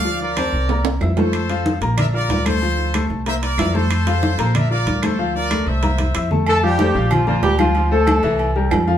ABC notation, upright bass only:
X:1
M:4/4
L:1/8
Q:1/4=187
K:F
V:1 name="Upright bass" clef=bass
D,,3 C,,3 F,,2- | F,,3 B,,,3 D,,2- | D,,3 C,,3 F,,2- | F,,3 B,,,3 D,,2- |
D,,3 C,,3 F,,2- | F,,3 B,,,3 D,,2- | D,,3 C,,3 F,,2 |]